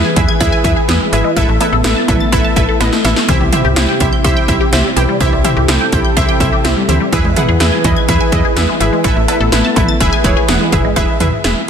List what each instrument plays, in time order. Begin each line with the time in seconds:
Already playing: analog synth pad E3 E4 G#4 B4, synth pluck E4 G#4 B4 E5
0.05 synth arpeggio sound G#5
0.16 fm bass E2, synth pluck E4 G#4 B4 E5, kick, closed hi-hat
0.28 synth arpeggio sound G#6
0.40 fm bass E2, synth pluck E4 G#4 B4 E5, synth arpeggio sound B5, kick, closed hi-hat
0.52 synth arpeggio sound G#5
0.64 fm bass E2, synth pluck E4 G#4 B4 E5, synth arpeggio sound E5, kick, closed hi-hat
0.76 synth arpeggio sound G#4
0.88 fm bass E2, synth arpeggio sound B3, synth pluck E4 G#4 B4 E5, snare, closed hi-hat
1.00 synth arpeggio sound G#3
1.12 fm bass G#1, synth arpeggio sound E3, synth pluck E4 G#4 B4 E5, closed hi-hat
1.24 synth arpeggio sound G#3
1.36 fm bass A1, synth arpeggio sound E3, analog synth pad A3 B3, synth pluck E4 A4 B4 E5, kick, closed hi-hat
1.48 fm bass A1, synth arpeggio sound A3
1.60 synth arpeggio sound B3, synth pluck E4 A4 B4 E5, closed hi-hat, cowbell
1.73 fm bass A1, synth arpeggio sound A4
1.84 fm bass A1, synth pluck E4 A4 B4 E5, snare, closed hi-hat
1.96 synth arpeggio sound A5
2.08 fm bass A1, synth pluck E4 A4 B4 E5, kick, closed hi-hat, mid tom, cowbell
2.20 synth arpeggio sound A6
2.32 fm bass A1, synth pluck E4 A4 B4 E5, synth arpeggio sound B5, kick, closed hi-hat
2.44 synth arpeggio sound A5
2.56 fm bass A1, synth pluck E4 A4 B4 E5, synth arpeggio sound E5, kick, closed hi-hat
2.69 synth arpeggio sound A4
2.80 fm bass A1, synth arpeggio sound B3, synth pluck E4 A4 B4 D#5, snare, closed hi-hat
2.93 synth arpeggio sound A3, snare
3.04 fm bass A1, synth arpeggio sound E3, synth pluck E4 A4 B4 E5, snare, closed hi-hat
3.16 synth arpeggio sound A3, snare
3.28 fm bass C2, analog synth pad C3 C4 G4, synth arpeggio sound E3, synth pluck E4 G4 C5 E5, kick, closed hi-hat
3.40 fm bass C2, synth arpeggio sound G3
3.52 synth arpeggio sound C4, synth pluck E4 G4 C5 E5, closed hi-hat, mid tom
3.64 fm bass C2, synth arpeggio sound G4
3.76 fm bass C2, synth pluck E4 G4 C5 E5, snare, closed hi-hat
3.89 synth arpeggio sound G5
4.00 fm bass C2, synth pluck E4 G4 C5 E5, kick, closed hi-hat
4.13 synth arpeggio sound G6
4.24 fm bass C2, synth pluck E4 G4 C5 E5, synth arpeggio sound C6, kick, closed hi-hat
4.37 synth arpeggio sound G5
4.48 fm bass C2, synth pluck E4 G4 C5 E5, synth arpeggio sound E5, kick, closed hi-hat
4.61 synth arpeggio sound G4
4.72 fm bass C2, synth arpeggio sound C4, synth pluck E4 G4 C5 E5, snare, closed hi-hat
4.85 synth arpeggio sound G3
4.96 fm bass B1, synth arpeggio sound E3, synth pluck E4 G4 C5 G5, closed hi-hat
5.09 synth arpeggio sound G3
5.21 fm bass C2, synth arpeggio sound E3, synth pluck E4 G4 C5 E5, analog synth pad A4, kick, closed hi-hat
5.32 fm bass C2, synth arpeggio sound G3
5.44 synth arpeggio sound C4, synth pluck E4 G4 C5 E5, closed hi-hat, mid tom
5.57 fm bass C2, synth arpeggio sound G4
5.68 fm bass C2, synth pluck E4 G4 C5 E5, snare, closed hi-hat
5.81 synth arpeggio sound G5
5.92 fm bass C2, synth pluck E4 G4 C5 G5, kick, closed hi-hat
6.05 synth arpeggio sound G6
6.17 fm bass C2, synth pluck E4 G4 C5 E5, synth arpeggio sound C6, kick, closed hi-hat
6.29 synth arpeggio sound G5
6.40 fm bass C2, synth pluck E4 G4 C5 E5, synth arpeggio sound E5, kick, closed hi-hat
6.52 synth arpeggio sound G4
6.64 fm bass C2, synth arpeggio sound C4, synth pluck E4 G4 C5 E5, snare, closed hi-hat
6.76 synth arpeggio sound G3
6.88 fm bass D2, synth arpeggio sound E3, synth pluck E4 G4 C5 E5, closed hi-hat
7.00 synth arpeggio sound G3
7.12 fm bass E2, synth arpeggio sound E3, analog synth pad E3 E4 G#4 B4, synth pluck E4 G#4 B4 E5, kick, closed hi-hat
7.24 fm bass E2, synth arpeggio sound G#3
7.36 synth arpeggio sound B3, synth pluck E4 G#4 B4 F#5, closed hi-hat, mid tom
7.48 fm bass E2, synth arpeggio sound G#4
7.60 fm bass E2, synth pluck E4 G#4 B4 E5, snare, closed hi-hat
7.72 synth arpeggio sound G#5
7.84 fm bass E2, synth pluck E4 G#4 B4 D#5, kick, closed hi-hat
7.96 synth arpeggio sound G#6
8.08 fm bass E2, synth pluck E4 G#4 B4 E5, synth arpeggio sound B5, kick, closed hi-hat
8.21 synth arpeggio sound G#5
8.32 fm bass E2, synth pluck E4 G#4 B4 D#5, synth arpeggio sound E5, kick, closed hi-hat
8.45 synth arpeggio sound G#4
8.56 fm bass E2, synth arpeggio sound B3, synth pluck E4 G#4 B4 E5, snare, closed hi-hat
8.69 synth arpeggio sound G#3
8.80 fm bass G#1, synth arpeggio sound E3, synth pluck E4 G#4 B4 E5, closed hi-hat
8.93 synth arpeggio sound G#3
9.04 fm bass A1, synth arpeggio sound E3, analog synth pad A3 B3, synth pluck E4 A4 B4 E5, kick, closed hi-hat
9.16 fm bass A1, synth arpeggio sound A3
9.28 synth arpeggio sound B3, synth pluck E4 A4 B4 E5, closed hi-hat, cowbell
9.40 fm bass A1, synth arpeggio sound A4
9.52 fm bass A1, synth pluck E4 A4 B4 E5, snare, closed hi-hat
9.65 synth arpeggio sound A5
9.76 fm bass A1, synth pluck E4 A4 B4 E5, kick, closed hi-hat, mid tom, cowbell
9.88 synth arpeggio sound A6
10.00 fm bass E1, analog synth pad E3 G#4 B4, synth pluck E4 G#4 B4 E5, synth arpeggio sound B5, kick, closed hi-hat
10.13 synth arpeggio sound G#5
10.24 fm bass E1, synth pluck E4 G#4 B4 C#5, synth arpeggio sound E5, kick, closed hi-hat
10.37 synth arpeggio sound G#4
10.48 fm bass E1, synth arpeggio sound B3, synth pluck E4 G#4 B4 F#5, snare, closed hi-hat
10.61 synth arpeggio sound G#3
10.72 fm bass F#1, synth arpeggio sound E3, synth pluck E4 G#4 B4 E5, kick, closed hi-hat, mid tom
10.85 synth arpeggio sound G#3
10.96 fm bass E1, synth pluck E4 G#4 B4 E5, kick, closed hi-hat
11.20 fm bass E2, synth pluck E4 G#4 B4 E5, closed hi-hat, mid tom
11.44 fm bass E1, synth pluck E4 G#4 B4 E5, snare, closed hi-hat